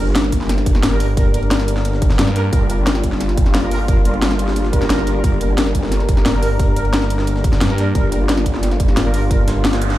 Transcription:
Already playing: wobble bass G1, analog synth pad G3 A#3 D4 A#4
0.15 snare, closed hi-hat, ride
0.24 snare
0.32 wobble bass G1, kick, closed hi-hat, ride
0.41 snare
0.49 snare, closed hi-hat, ride
0.58 snare, ride
0.66 kick, closed hi-hat, ride
0.75 snare
0.83 fm bass G1, snare, closed hi-hat, ride
0.92 brass ensemble G3 D4 A#4
1.00 brass ensemble G3 D4 A#4, closed hi-hat, open hi-hat
1.17 brass ensemble G3 D4 A#4, kick, closed hi-hat, ride
1.34 brass ensemble G3 D4 A#4, closed hi-hat, ride
1.43 ride
1.51 snare, closed hi-hat, ride
1.59 snare
1.68 closed hi-hat, ride
1.76 snare
1.85 closed hi-hat, ride
1.93 snare
2.02 kick, closed hi-hat, ride
2.10 snare
2.19 fm bass G2, snare, closed hi-hat, ride
2.27 snare
2.36 brass ensemble G3 D4 A#4, snare, closed hi-hat, ride
2.53 wobble bass G1, brass ensemble G3 D4 A#4, analog synth pad F4, kick, closed hi-hat, ride
2.70 brass ensemble G3 D4 A#4, closed hi-hat, ride
2.87 snare, closed hi-hat, ride
2.95 snare
3.04 wobble bass G1, kick, closed hi-hat, ride
3.12 snare
3.21 snare, closed hi-hat, ride
3.29 snare, ride
3.37 kick, closed hi-hat, ride
3.46 snare
3.54 wobble bass G1, snare, closed hi-hat, ride
3.63 brass ensemble G3 D4 A#4
3.71 brass ensemble G3 D4 A#4, closed hi-hat, open hi-hat
3.88 brass ensemble G3 D4 A#4, kick, closed hi-hat, ride
4.05 brass ensemble G3 D4 A#4, closed hi-hat, ride
4.14 ride
4.22 snare, closed hi-hat, ride
4.31 snare
4.39 closed hi-hat, ride
4.48 snare
4.56 closed hi-hat, ride
4.65 snare
4.73 brass ensemble G3 D4 A#4, kick, closed hi-hat, ride
4.82 snare
4.90 wobble bass G1, snare, closed hi-hat, ride
4.99 snare
5.07 snare, closed hi-hat, ride
5.24 wobble bass G1, brass ensemble G3 D4 A#4, analog synth pad A#4, kick, closed hi-hat, ride
5.41 brass ensemble G3 D4 A#4, closed hi-hat, ride
5.58 snare, closed hi-hat, ride
5.66 snare
5.75 wobble bass G1, kick, closed hi-hat, ride
5.83 snare
5.92 snare, closed hi-hat, ride
6.00 snare, ride
6.09 kick, closed hi-hat, ride
6.17 snare
6.26 fm bass G1, snare, closed hi-hat, ride
6.34 brass ensemble G3 D4 A#4
6.43 brass ensemble G3 D4 A#4, closed hi-hat, open hi-hat
6.59 brass ensemble G3 D4 A#4, kick, closed hi-hat, ride
6.76 brass ensemble G3 D4 A#4, closed hi-hat, ride
6.85 ride
6.93 snare, closed hi-hat, ride
7.02 snare
7.10 closed hi-hat, ride
7.19 snare
7.27 closed hi-hat, ride
7.36 snare
7.44 kick, closed hi-hat, ride
7.53 snare
7.61 fm bass G2, snare, closed hi-hat, ride
7.70 brass ensemble G3 D4 A#4, snare
7.78 brass ensemble G3 D4 A#4, snare, closed hi-hat, ride
7.95 wobble bass G1, brass ensemble G3 D4 A#4, analog synth pad F4, kick, closed hi-hat, ride
8.12 brass ensemble G3 D4 A#4, closed hi-hat, ride
8.29 snare, closed hi-hat, ride
8.37 snare
8.46 wobble bass G1, kick, closed hi-hat, ride
8.54 snare
8.63 snare, closed hi-hat, ride
8.71 snare, ride
8.80 kick, closed hi-hat, ride
8.88 snare
8.97 fm bass G1, snare, closed hi-hat, ride
9.05 brass ensemble G3 D4 A#4
9.14 brass ensemble G3 D4 A#4, closed hi-hat, open hi-hat
9.31 brass ensemble G3 D4 A#4, kick, closed hi-hat, ride, noise sweep
9.48 snare, closed hi-hat, ride
9.65 snare, closed hi-hat, ride
9.73 snare, ride
9.82 closed hi-hat
9.90 snare, ride

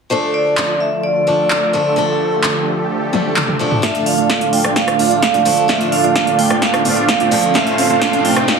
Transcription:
0.10 supersaw synth D3 F3 A3 F4 A4, steel-string acoustic guitar F3 A3 D4 A4, vibraphone C5
0.34 vibraphone D5
0.57 clap
0.80 vibraphone E5
1.03 vibraphone D5
1.27 steel-string acoustic guitar F3 A3 D4 A4
1.50 vibraphone D5, clap
1.73 steel-string acoustic guitar F3 A3 D4 A4
1.96 steel-string acoustic guitar F3 A3 D4 A4, supersaw synth G4, vibraphone A4
2.44 clap
3.13 steel-string acoustic guitar F3 A3 D4 A4, high tom
3.36 clap, mid tom
3.48 mid tom
3.59 steel-string acoustic guitar F3 A3 D4 A4
3.71 mid tom
3.82 supersaw synth D3 F3 A3 D4 F4 A4 D5 F5, steel-string acoustic guitar F3 A3 A4, vibraphone E5, kick, snare, closed hi-hat, riser
3.95 closed hi-hat
4.06 vibraphone F5, open hi-hat
4.18 supersaw synth A3 D4 F4 D5 F5, closed hi-hat
4.30 kick, snare, closed hi-hat
4.41 closed hi-hat
4.53 vibraphone G5, open hi-hat
4.64 supersaw synth A3 D4 F4 D5 G5, cross-stick, closed hi-hat
4.76 vibraphone F5, kick, snare, closed hi-hat
4.88 cross-stick, closed hi-hat
4.99 steel-string acoustic guitar F3 A3 D4 A4, supersaw synth A3 D4 F4 D5 F5, open hi-hat
5.11 closed hi-hat
5.22 vibraphone F5, kick, snare, closed hi-hat
5.34 supersaw synth A3 D4 F4 D5 G5, closed hi-hat
5.45 steel-string acoustic guitar F3 A3 D4 A4, open hi-hat
5.57 closed hi-hat
5.68 steel-string acoustic guitar F3 A3 A4, supersaw synth A3 D4 F4 D5 F5, vibraphone E5, kick, snare, closed hi-hat
5.81 closed hi-hat
5.92 vibraphone F5, open hi-hat
6.04 supersaw synth A3 D4 F4 D5 F5, closed hi-hat
6.16 kick, snare, closed hi-hat
6.27 closed hi-hat
6.39 vibraphone G5, open hi-hat
6.50 supersaw synth A3 D4 F4 D5 G5, cross-stick, closed hi-hat
6.62 vibraphone F5, kick, snare, closed hi-hat
6.74 cross-stick, closed hi-hat
6.85 steel-string acoustic guitar F3 A3 D4 A4, supersaw synth A3 D4 F4 D5 F5, open hi-hat
6.97 closed hi-hat
7.08 vibraphone F5, kick, snare, closed hi-hat
7.20 supersaw synth A3 D4 F4 D5 G5, closed hi-hat
7.31 steel-string acoustic guitar F3 A3 D4 A4, open hi-hat
7.43 closed hi-hat
7.54 supersaw synth C3 A3 C4 F4 A4 C5 F5, steel-string acoustic guitar F3 A3 C4 A4, vibraphone E5, kick, snare, closed hi-hat
7.67 closed hi-hat
7.78 vibraphone F5, open hi-hat
7.90 supersaw synth A3 C4 F4 C5 F5, closed hi-hat
8.02 kick, snare, closed hi-hat
8.13 closed hi-hat
8.25 vibraphone G5, open hi-hat
8.36 supersaw synth A3 C4 F4 C5 G5, cross-stick, closed hi-hat
8.48 vibraphone F5, kick, snare, closed hi-hat

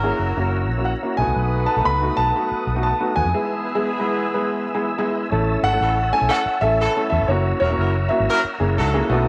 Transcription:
Already playing: fingered electric bass G#1, horn section F#3 E4 A#4, tonewheel organ C#5 F#5 A#5 E6, grand piano F#5
0.03 upright piano A#3 C#4 E4 G#4
0.19 fingered electric bass F#1
0.37 fingered electric bass F#1, upright piano A#3 C#4 E4 F#4
0.69 fingered electric bass A#1
0.78 upright piano A#3 C#4 E4 F#4
0.85 grand piano F#5
1.03 upright piano A#3 C#4 E4 F#4
1.17 fingered electric bass B1, horn section F#3 D#4 B4, upright piano A3 B3 D#4 F#4, tonewheel organ A4 B4 F#5 D#6, grand piano G#5
1.27 fingered electric bass C2
1.36 fingered electric bass B1
1.66 grand piano A5
1.76 fingered electric bass B1, upright piano A3 B3 D#4 A4
1.85 fingered electric bass C#2, grand piano B5
2.02 upright piano A3 B3 D#4 F#4
2.17 fingered electric bass B1, grand piano A5
2.35 upright piano A3 B3 D#4 F#4
2.51 muted fingered electric bass stroke
2.67 fingered electric bass B1
2.76 upright piano A3 B3 D#4 F#4
2.83 grand piano A5
3.00 upright piano A3 B3 D#4 F#4
3.16 fingered electric bass D#2, grand piano G#5
3.25 fingered electric bass F2
3.34 horn section E3 B3 G#4, upright piano G#3 B3 E4 G#4, tonewheel organ E5 G#5 E6
3.75 upright piano G#3 B3 E4 G#4
4.00 upright piano G#3 B3 E4 B4
4.34 upright piano G#3 B3 E4 B4
4.74 upright piano G#3 B3 E4 G#4
4.98 upright piano G#3 B3 E4 G#4
5.31 fingered electric bass A1, upright piano A3 C#4 E4 A4, tonewheel organ C#5 E5 A5 E6
5.63 fingered electric bass G#1, horn section E3 C#4 A4, grand piano F#5
5.73 upright piano A3 C#4 E4 A4
5.81 fingered electric bass A1, horn section E3 C#4 A4
6.13 upright piano A3 C#4 E4 A4, grand piano G#5
6.21 fingered electric bass B1
6.29 horn section E3 C#4 A4, grand piano F#5
6.46 muted fingered electric bass stroke
6.61 fingered electric bass A1, upright piano A3 C#4 E4 A4, grand piano E5
6.80 horn section E3 C#4 A4
6.97 upright piano A3 C#4 E4 A4
7.10 fingered electric bass E2, grand piano E5
7.20 fingered electric bass G1
7.28 fingered electric bass F#1, upright piano A#3 C#4 E4 F#4, grand piano C#5, tonewheel organ F#5 A#5
7.60 fingered electric bass E1, horn section F#3 E4 A#4, grand piano C#5
7.70 upright piano A#3 C#4 E4 F#4
7.78 fingered electric bass F#1, horn section F#3 E4 A#4
8.09 upright piano A#3 C#4 E4 F#4, grand piano E5
8.20 fingered electric bass G#1
8.29 horn section F#3 E4 A#4
8.44 muted fingered electric bass stroke
8.60 fingered electric bass F#1, upright piano A#3 C#4 E4 G#4
8.77 fingered electric bass C#2, horn section F#3 D#4 A4
8.94 upright piano A#3 C#4 E4 G#4
9.09 fingered electric bass B1, upright piano A3 B3 D4 F#4, tonewheel organ B4 A5 D#6
9.16 upright piano D#4

